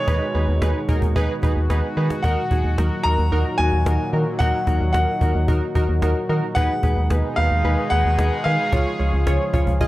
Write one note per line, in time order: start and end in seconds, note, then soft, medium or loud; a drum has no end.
0.00 2.20 B2 medium
0.00 6.52 D#3 medium
0.00 2.20 G#3 medium
0.00 6.52 D#4 medium
0.00 1.38 C#5 loud
0.08 0.19 D#2 loud
0.08 0.25 D#4 medium
0.08 6.52 F#4 medium
0.08 0.25 G#4 medium
0.08 0.25 B4 loud
0.08 cajon bass loud
0.35 0.46 D#2 loud
0.35 0.52 D#4 medium
0.35 0.52 G#4 medium
0.35 0.52 B4 medium
0.35 cajon slap soft
0.48 0.60 D#2 medium
0.62 0.73 D#2 loud
0.62 0.79 D#4 medium
0.62 0.79 G#4 medium
0.62 0.79 B4 loud
0.62 cajon slap loud
0.89 1.00 D#2 loud
0.89 1.06 D#4 medium
0.89 1.06 G#4 medium
0.89 1.06 A#4 medium
0.89 cajon bass loud
1.02 1.14 D#2 medium
1.02 cajon bass medium
1.16 1.27 D#2 loud
1.16 1.33 D#4 loud
1.16 1.33 G#4 loud
1.16 1.33 B4 loud
1.16 cajon bass loud
1.43 1.54 D#2 loud
1.43 1.60 D#4 medium
1.43 1.60 G#4 medium
1.43 1.60 B4 medium
1.43 cajon bass medium
1.56 1.68 D#2 loud
1.70 1.81 D#2 loud
1.70 1.87 D#4 medium
1.70 1.87 G#4 medium
1.70 1.87 B4 loud
1.70 cajon slap loud
1.97 2.08 D#3 loud
1.97 2.14 D#4 medium
1.97 2.14 G#4 medium
1.97 2.14 B4 medium
1.97 cajon slap soft
2.10 cajon slap medium
2.23 2.35 D#2 loud
2.23 6.52 A#2 medium
2.23 6.52 F#3 medium
2.23 2.41 D#4 medium
2.23 2.41 F#4 medium
2.23 2.41 A#4 loud
2.23 3.07 F#5 medium
2.23 cajon bass loud
2.51 2.62 D#2 loud
2.51 2.69 D#4 medium
2.51 2.69 F#4 medium
2.51 2.68 G#4 medium
2.51 cajon bass medium
2.64 2.76 D#2 medium
2.78 2.90 D#2 loud
2.78 2.96 D#4 medium
2.78 2.96 F#4 medium
2.78 2.96 A#4 medium
2.78 cajon slap loud
3.04 3.17 D#2 medium
3.04 3.22 D#4 medium
3.04 3.23 F#4 medium
3.04 3.23 A#4 medium
3.04 3.54 A#5 loud
3.18 3.30 D#2 medium
3.32 3.44 D#2 loud
3.32 3.49 D#4 medium
3.32 3.50 F#4 medium
3.32 3.49 A#4 loud
3.32 cajon slap soft
3.58 3.71 D#2 loud
3.58 3.77 D#4 medium
3.58 3.77 F#4 medium
3.58 3.77 A#4 medium
3.58 4.09 G#5 loud
3.73 3.84 D#2 loud
3.86 3.98 D#2 loud
3.86 4.04 D#4 medium
3.86 4.04 F#4 medium
3.86 4.04 A#4 medium
3.86 cajon slap loud
4.13 4.25 D#3 loud
4.13 4.31 D#4 medium
4.13 4.31 F#4 medium
4.13 4.31 A#4 medium
4.13 cajon slap soft
4.39 4.52 D#2 loud
4.39 4.58 D#4 medium
4.39 4.58 F#4 medium
4.39 4.58 A#4 loud
4.39 4.91 F#5 loud
4.39 cajon bass loud
4.67 4.79 D#2 loud
4.67 4.85 D#4 medium
4.67 4.85 F#4 medium
4.67 4.85 A#4 medium
4.67 cajon bass loud
4.81 4.92 D#2 loud
4.93 5.06 D#2 loud
4.93 5.12 D#4 medium
4.93 5.12 F#4 medium
4.93 5.12 A#4 medium
4.93 5.44 F#5 medium
4.93 cajon slap loud
5.21 5.33 D#2 loud
5.21 5.39 D#4 medium
5.21 5.39 F#4 medium
5.21 5.39 A#4 medium
5.21 cajon bass loud
5.35 5.46 D#2 medium
5.48 5.60 D#2 loud
5.48 5.66 D#4 medium
5.48 5.66 F#4 medium
5.48 5.66 A#4 loud
5.48 cajon bass loud
5.75 5.87 D#2 medium
5.75 5.93 D#4 medium
5.75 5.93 F#4 medium
5.75 5.93 A#4 loud
5.75 cajon bass medium
5.89 6.00 D#2 loud
6.02 6.14 D#2 loud
6.02 6.20 D#4 medium
6.02 6.20 F#4 medium
6.02 6.20 A#4 loud
6.02 cajon slap loud
6.29 6.41 D#3 loud
6.29 6.47 D#4 medium
6.29 6.47 F#4 medium
6.29 6.47 A#4 loud
6.29 cajon slap soft
6.55 6.68 D#2 loud
6.55 8.70 B2 medium
6.55 8.70 D#3 medium
6.55 9.88 G#3 medium
6.55 6.74 D#4 medium
6.55 8.70 D#4 medium
6.55 6.74 G#4 medium
6.55 9.88 G#4 medium
6.55 6.74 B4 loud
6.55 7.06 F#5 loud
6.55 cajon bass loud
6.83 6.95 D#2 loud
6.83 7.01 D#4 medium
6.83 7.01 G#4 medium
6.83 7.01 B4 medium
6.83 cajon bass loud
6.97 7.08 D#2 medium
7.10 7.22 D#2 loud
7.10 7.28 D#4 medium
7.10 7.28 G#4 medium
7.10 7.28 B4 medium
7.10 cajon slap loud
7.36 7.49 D#2 loud
7.36 7.55 D#4 medium
7.36 7.55 G#4 medium
7.36 7.55 B4 medium
7.36 7.87 F5 loud
7.51 7.62 D#2 medium
7.64 7.76 D#2 loud
7.64 7.82 D#4 medium
7.64 7.82 G#4 medium
7.64 7.82 B4 loud
7.64 cajon slap soft
7.90 8.03 D#2 loud
7.90 8.09 D#4 medium
7.90 8.09 G#4 medium
7.90 8.09 B4 medium
7.90 8.41 F#5 loud
8.05 8.16 D#2 medium
8.19 8.30 D#2 loud
8.19 8.36 D#4 medium
8.19 8.36 G#4 medium
8.19 8.36 B4 medium
8.19 cajon slap loud
8.44 8.57 D#3 loud
8.44 8.63 D#4 medium
8.44 8.63 G#4 medium
8.44 8.63 B4 medium
8.44 9.88 F5 loud
8.44 cajon slap soft
8.73 8.84 C#2 loud
8.73 9.88 C#3 medium
8.73 9.88 F3 medium
8.73 8.90 F4 loud
8.73 9.88 F4 medium
8.73 8.90 G#4 medium
8.73 8.90 C#5 loud
8.73 cajon bass loud
9.00 9.11 C#2 loud
9.00 9.17 F4 medium
9.00 9.17 G#4 medium
9.00 9.17 C#5 medium
9.00 cajon slap soft
9.13 9.25 C#2 medium
9.27 9.38 C#2 loud
9.27 9.44 F4 medium
9.27 9.44 G#4 medium
9.27 9.44 C#5 loud
9.27 cajon slap loud
9.54 9.65 C#2 loud
9.54 9.71 F4 medium
9.54 9.71 G#4 medium
9.54 9.71 C#5 loud
9.54 cajon bass loud
9.67 9.79 C#2 medium
9.67 cajon bass medium
9.81 9.88 C#2 loud
9.81 9.88 F4 loud
9.81 9.88 G#4 loud
9.81 9.88 D#5 loud
9.81 cajon bass loud